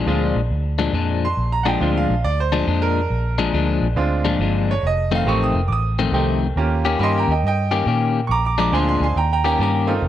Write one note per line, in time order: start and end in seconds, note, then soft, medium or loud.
0.00 0.20 G#4 loud
0.06 0.32 D2 medium
0.06 0.40 A#2 medium
0.06 0.40 F3 medium
0.06 0.32 G#3 medium
0.06 0.40 G#3 medium
0.06 0.32 C4 medium
0.06 0.32 D4 medium
0.06 0.40 D4 medium
0.06 0.32 F4 medium
0.35 0.49 A#1 medium
0.50 0.89 D2 medium
0.79 0.92 A#2 medium
0.79 0.93 F3 medium
0.79 0.93 G#3 medium
0.79 0.94 D4 loud
0.93 1.32 F2 medium
0.93 1.26 A#2 medium
0.93 1.27 F3 medium
0.93 1.27 G#3 medium
0.93 1.27 D4 medium
1.25 1.52 C6 medium
1.37 1.76 A#1 medium
1.52 1.66 A#5 medium
1.63 1.80 A#2 medium
1.63 1.80 F3 medium
1.63 1.81 G#3 medium
1.63 1.81 D4 loud
1.63 1.67 F#5 medium
1.68 1.95 G5 medium
1.81 2.06 D2 medium
1.81 2.14 A#2 medium
1.81 2.14 F3 medium
1.81 2.06 G#3 medium
1.81 2.14 G#3 medium
1.81 2.06 C4 medium
1.81 2.06 D4 medium
1.81 2.14 D4 medium
1.81 2.06 F4 medium
1.97 2.24 F5 medium
2.09 2.22 A#1 medium
2.24 2.63 D2 medium
2.24 2.38 D5 loud
2.40 2.81 C5 medium
2.52 2.66 A#2 medium
2.52 2.66 F3 medium
2.52 2.67 G#3 medium
2.52 2.67 D4 loud
2.67 3.06 F2 loud
2.67 3.00 A#2 medium
2.67 3.00 F3 medium
2.67 3.00 G#3 medium
2.67 3.00 D4 medium
2.82 3.66 A#4 loud
3.10 3.49 A#1 medium
3.38 3.52 A#2 medium
3.38 3.53 F3 medium
3.38 3.53 G#3 loud
3.38 3.53 D4 medium
3.53 3.78 D2 medium
3.53 3.86 A#2 medium
3.53 3.86 F3 medium
3.53 3.87 G#3 medium
3.53 3.87 D4 medium
3.81 3.95 A#1 medium
3.96 4.35 D2 loud
3.96 4.62 G#3 medium
3.96 4.62 C4 medium
3.96 4.63 D4 medium
3.96 4.63 F4 medium
4.25 4.40 A#2 medium
4.25 4.40 F3 medium
4.25 4.40 G#3 medium
4.25 4.40 D4 medium
4.39 4.78 G1 medium
4.39 4.73 A#2 medium
4.39 4.73 F3 medium
4.39 4.74 G#3 medium
4.39 4.74 D4 medium
4.71 4.84 C#5 medium
4.83 5.22 F1 medium
4.83 5.13 D#5 loud
5.12 5.26 F2 medium
5.12 5.26 D#3 medium
5.12 5.27 A3 loud
5.12 5.27 C4 medium
5.12 5.28 F5 loud
5.26 5.51 A1 medium
5.26 5.60 F2 medium
5.26 5.60 D#3 medium
5.26 5.52 A3 medium
5.26 5.60 A3 medium
5.26 5.52 C4 medium
5.26 5.60 C4 medium
5.26 5.52 D#4 medium
5.26 5.52 G4 medium
5.26 5.42 C#6 medium
5.43 5.70 D#6 medium
5.54 5.68 F1 medium
5.68 6.08 A1 loud
5.68 5.71 D6 medium
5.72 6.13 D#6 loud
5.99 6.12 F2 medium
5.99 6.13 D#3 medium
5.99 6.13 A3 medium
5.99 6.13 C4 loud
6.12 6.51 C2 medium
6.12 6.46 F2 medium
6.12 6.46 D#3 medium
6.12 6.38 A3 medium
6.12 6.46 A3 medium
6.12 6.39 C4 medium
6.12 6.46 C4 medium
6.12 6.38 D#4 medium
6.12 6.39 G4 medium
6.56 6.95 D#2 medium
6.56 7.23 A#3 medium
6.56 7.23 C#4 medium
6.56 7.23 F4 medium
6.56 7.23 G4 medium
6.85 6.98 D#3 medium
6.85 6.99 A#3 medium
6.85 6.99 C#4 medium
6.85 7.00 G4 loud
6.99 7.24 G2 medium
6.99 7.32 D#3 medium
6.99 7.33 A#3 medium
6.99 7.33 C#4 medium
6.99 7.33 G4 medium
6.99 7.15 D#5 medium
6.99 7.02 B5 medium
7.03 7.16 C6 loud
7.18 7.30 G5 medium
7.18 7.31 A#5 medium
7.28 7.42 D#2 medium
7.28 7.44 D#5 medium
7.32 7.45 G5 medium
7.43 7.82 G2 loud
7.43 7.85 D#5 medium
7.48 7.88 G5 loud
7.71 7.86 D#3 medium
7.71 7.86 A#3 medium
7.71 7.87 C#4 medium
7.71 7.87 G4 loud
7.86 8.31 A#2 medium
7.86 8.19 D#3 medium
7.86 8.20 A#3 medium
7.86 8.20 C#4 medium
7.86 8.20 G4 medium
8.27 8.68 A#1 loud
8.27 8.44 A#5 loud
8.27 8.31 C#6 medium
8.27 8.45 D6 loud
8.45 8.58 A#5 medium
8.45 8.58 D6 medium
8.58 8.72 A#2 medium
8.58 8.72 F3 loud
8.58 8.73 G#3 loud
8.58 8.73 D4 loud
8.58 8.73 A#5 medium
8.58 8.73 D6 loud
8.72 8.98 D2 loud
8.72 9.06 A#2 medium
8.72 9.06 F3 medium
8.72 9.06 G#3 medium
8.72 9.16 C4 medium
8.72 9.16 D4 medium
8.72 9.06 D4 medium
8.72 9.16 F4 medium
8.72 9.16 G#4 medium
8.72 8.87 G#5 medium
8.72 8.87 C6 loud
8.88 9.01 G#5 medium
8.88 9.02 C6 medium
9.00 9.14 D2 loud
9.00 9.16 G#5 medium
9.00 9.17 C6 medium
9.16 9.55 D#2 loud
9.16 9.30 G5 medium
9.16 9.31 A#5 loud
9.33 9.45 G5 medium
9.33 9.46 A#5 loud
9.44 9.59 D#3 medium
9.44 9.59 A#3 medium
9.44 9.60 C#4 medium
9.44 9.60 G4 loud
9.44 9.60 G5 medium
9.44 9.60 A#5 loud
9.58 9.98 G2 loud
9.58 9.93 D#3 medium
9.58 9.93 A#3 medium
9.58 9.93 C#4 medium
9.58 9.93 G4 medium
9.58 9.61 A5 medium
9.62 10.03 A#5 medium
9.87 10.01 A3 medium
9.87 10.01 C4 medium
9.87 10.02 D#4 medium
9.87 10.01 F4 medium
10.02 10.08 F1 loud